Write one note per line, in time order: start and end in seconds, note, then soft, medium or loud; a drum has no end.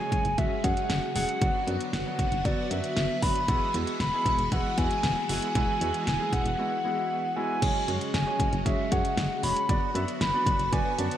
0.00 1.39 C#3 medium
0.00 0.25 F#3 medium
0.00 3.44 F#3 medium
0.00 0.25 G#3 medium
0.00 1.39 G#3 medium
0.00 0.25 C#4 medium
0.00 7.58 F#4 medium
0.00 0.25 G#4 medium
0.00 0.40 G#5 loud
0.12 0.22 F#1 loud
0.12 kick loud
0.12 closed hi-hat medium
0.25 0.35 F#1 loud
0.25 closed hi-hat medium
0.38 0.48 F#1 loud
0.38 0.55 F#3 medium
0.38 0.55 G#3 medium
0.38 0.55 C#4 medium
0.38 0.55 F#4 medium
0.38 0.65 E5 loud
0.38 kick medium
0.38 closed hi-hat medium
0.64 0.74 F#2 loud
0.64 0.98 F#3 medium
0.64 0.98 G#3 medium
0.64 0.98 C#4 medium
0.64 0.98 G#4 medium
0.64 1.15 F#5 loud
0.64 kick loud
0.64 closed hi-hat medium
0.77 closed hi-hat medium
0.90 1.00 F#1 loud
0.90 snare loud
0.90 closed hi-hat medium
1.16 1.25 E1 medium
1.16 1.33 F#3 medium
1.16 1.33 G#3 medium
1.16 1.33 C#4 medium
1.16 1.33 G#4 medium
1.16 1.64 F#5 medium
1.16 open hi-hat medium
1.29 closed hi-hat medium
1.41 1.51 F#1 loud
1.41 3.46 D3 medium
1.41 1.59 F#3 medium
1.41 1.59 B3 medium
1.41 7.58 B3 medium
1.41 1.59 D4 medium
1.41 1.59 F#4 medium
1.41 kick loud
1.41 closed hi-hat medium
1.67 1.77 F#2 loud
1.67 1.93 F#3 medium
1.67 1.93 B3 medium
1.67 1.93 D4 medium
1.67 1.93 F#4 medium
1.67 closed hi-hat medium
1.81 closed hi-hat medium
1.93 2.03 F#1 loud
1.93 2.47 F#5 medium
1.93 snare loud
1.93 closed hi-hat medium
2.06 2.32 F#3 medium
2.06 2.32 B3 medium
2.06 2.32 D4 medium
2.06 2.32 F#4 medium
2.19 2.29 F#1 loud
2.19 kick loud
2.19 closed hi-hat medium
2.32 2.42 F#1 loud
2.32 closed hi-hat medium
2.45 2.55 F#1 loud
2.45 2.62 F#3 medium
2.45 2.62 B3 medium
2.45 2.62 D4 medium
2.45 2.62 F#4 medium
2.45 2.72 D5 medium
2.45 kick medium
2.45 closed hi-hat medium
2.71 2.81 F#2 loud
2.71 3.05 F#3 medium
2.71 3.05 B3 medium
2.71 3.05 D4 medium
2.71 3.05 F#4 medium
2.71 3.24 E5 loud
2.71 closed hi-hat medium
2.84 closed hi-hat medium
2.97 3.07 F#1 loud
2.97 snare loud
2.97 closed hi-hat medium
3.22 3.32 F#1 medium
3.22 3.40 F#3 medium
3.22 3.40 B3 medium
3.22 3.40 D4 medium
3.22 3.40 F#4 medium
3.22 3.74 B5 loud
3.22 kick loud
3.22 open hi-hat medium
3.36 closed hi-hat medium
3.48 3.58 E1 loud
3.48 7.58 E3 medium
3.48 3.66 G#3 medium
3.48 7.58 G#3 medium
3.48 3.66 B3 medium
3.48 3.66 E4 medium
3.48 3.66 F#4 medium
3.48 kick loud
3.48 closed hi-hat medium
3.74 3.84 E2 loud
3.74 4.00 G#3 medium
3.74 4.00 B3 medium
3.74 4.00 E4 medium
3.74 4.00 F#4 medium
3.74 closed hi-hat medium
3.87 closed hi-hat medium
4.00 4.10 E1 loud
4.00 4.54 B5 loud
4.00 snare loud
4.00 closed hi-hat medium
4.13 4.39 G#3 medium
4.13 4.39 B3 medium
4.13 4.39 E4 medium
4.13 4.39 G#4 medium
4.26 4.35 E1 loud
4.26 kick loud
4.26 closed hi-hat medium
4.39 4.49 E1 loud
4.39 closed hi-hat medium
4.52 4.62 E1 loud
4.52 4.69 G#3 medium
4.52 4.69 B3 medium
4.52 4.69 E4 medium
4.52 4.69 F#4 medium
4.52 4.79 F#5 loud
4.52 kick medium
4.52 closed hi-hat medium
4.78 4.87 E2 medium
4.78 5.12 G#3 medium
4.78 5.12 B3 medium
4.78 5.12 E4 medium
4.78 5.12 F#4 medium
4.78 5.29 G#5 loud
4.78 kick loud
4.78 closed hi-hat medium
4.91 closed hi-hat medium
5.03 5.13 E1 loud
5.03 snare loud
5.03 closed hi-hat medium
5.29 5.39 F#1 medium
5.29 5.47 G#3 medium
5.29 5.47 B3 medium
5.29 5.47 E4 medium
5.29 5.47 F#4 medium
5.29 6.03 G#5 loud
5.29 open hi-hat medium
5.42 closed hi-hat medium
5.55 5.65 E1 loud
5.55 5.73 G#3 medium
5.55 5.73 B3 medium
5.55 5.73 E4 medium
5.55 5.73 F#4 medium
5.55 kick loud
5.55 closed hi-hat medium
5.81 5.91 E2 loud
5.81 6.07 G#3 medium
5.81 6.07 B3 medium
5.81 6.07 E4 medium
5.81 6.07 F#4 medium
5.81 closed hi-hat medium
5.94 closed hi-hat medium
6.07 6.17 E1 loud
6.07 6.35 G#5 loud
6.07 snare loud
6.07 closed hi-hat medium
6.20 6.46 G#3 medium
6.20 6.46 B3 medium
6.20 6.46 E4 medium
6.20 6.46 G#4 medium
6.33 6.42 E1 loud
6.33 7.35 F#5 medium
6.33 kick loud
6.33 closed hi-hat medium
6.46 6.56 E1 medium
6.46 closed hi-hat medium
6.59 6.76 G#3 medium
6.59 6.76 B3 medium
6.59 6.76 E4 medium
6.59 6.76 F#4 medium
6.85 7.19 G#3 medium
6.85 7.19 B3 medium
6.85 7.19 E4 medium
6.85 7.19 F#4 medium
7.36 7.54 G#3 medium
7.36 7.54 B3 medium
7.36 7.54 E4 medium
7.36 7.54 F#4 loud
7.36 7.84 G#5 loud
7.62 7.72 F#1 loud
7.62 9.67 C#3 medium
7.62 11.17 F#3 medium
7.62 7.79 G#3 medium
7.62 9.67 G#3 medium
7.62 7.79 C#4 medium
7.62 7.79 F#4 medium
7.62 11.17 F#4 medium
7.62 7.79 G#4 medium
7.62 7.79 C#5 medium
7.62 kick loud
7.62 closed hi-hat medium
7.62 crash loud
7.88 7.98 F#2 medium
7.88 8.14 G#3 medium
7.88 8.14 C#4 medium
7.88 8.14 F#4 medium
7.88 8.14 G#4 medium
7.88 8.14 C#5 medium
7.88 closed hi-hat medium
8.01 closed hi-hat medium
8.14 8.24 F#1 loud
8.14 8.62 G#5 loud
8.14 snare loud
8.14 closed hi-hat medium
8.27 8.53 G#3 medium
8.27 8.53 C#4 medium
8.27 8.53 F#4 medium
8.27 8.53 G#4 medium
8.27 8.53 C#5 medium
8.40 8.49 F#1 loud
8.40 kick loud
8.40 closed hi-hat medium
8.53 8.63 F#1 loud
8.53 closed hi-hat medium
8.66 8.75 F#1 loud
8.66 8.83 G#3 medium
8.66 8.83 C#4 medium
8.66 8.83 F#4 medium
8.66 8.83 G#4 medium
8.66 8.83 C#5 medium
8.66 8.93 E5 medium
8.66 kick medium
8.66 closed hi-hat medium
8.92 9.01 F#2 loud
8.92 9.26 G#3 medium
8.92 9.26 C#4 medium
8.92 9.26 F#4 medium
8.92 9.26 G#4 medium
8.92 9.26 C#5 medium
8.92 9.43 F#5 loud
8.92 kick loud
8.92 closed hi-hat medium
9.05 closed hi-hat medium
9.17 9.27 F#1 loud
9.17 snare loud
9.17 closed hi-hat medium
9.43 9.53 E1 loud
9.43 9.60 G#3 medium
9.43 9.60 C#4 medium
9.43 9.60 F#4 medium
9.43 9.60 G#4 medium
9.43 9.60 C#5 medium
9.43 9.92 B5 loud
9.43 open hi-hat medium
9.56 closed hi-hat medium
9.69 9.79 F#1 loud
9.69 11.17 D3 medium
9.69 9.86 B3 medium
9.69 11.17 B3 medium
9.69 9.86 D4 medium
9.69 9.86 F#4 medium
9.69 9.86 B4 medium
9.69 9.86 D5 medium
9.69 kick loud
9.69 closed hi-hat medium
9.95 10.05 F#2 loud
9.95 10.21 B3 medium
9.95 10.21 D4 medium
9.95 10.21 F#4 medium
9.95 10.21 B4 medium
9.95 10.21 E5 medium
9.95 closed hi-hat medium
10.08 closed hi-hat medium
10.21 10.31 F#1 loud
10.21 10.74 B5 loud
10.21 snare loud
10.21 closed hi-hat medium
10.34 10.59 B3 medium
10.34 10.59 D4 medium
10.34 10.59 F#4 medium
10.34 10.59 B4 medium
10.34 10.59 D5 medium
10.46 10.56 F#1 loud
10.46 kick loud
10.46 closed hi-hat medium
10.59 10.69 F#1 medium
10.59 closed hi-hat medium
10.72 10.82 F#1 loud
10.72 10.90 B3 medium
10.72 10.90 D4 medium
10.72 10.90 F#4 medium
10.72 10.90 B4 medium
10.72 10.90 D5 medium
10.72 11.00 G#5 loud
10.72 kick medium
10.72 closed hi-hat medium
10.98 11.08 F#2 loud
10.98 11.17 B3 medium
10.98 11.17 D4 medium
10.98 11.17 F#4 medium
10.98 11.17 B4 medium
10.98 11.17 D5 medium
10.98 11.17 A5 loud
10.98 closed hi-hat medium
11.11 closed hi-hat medium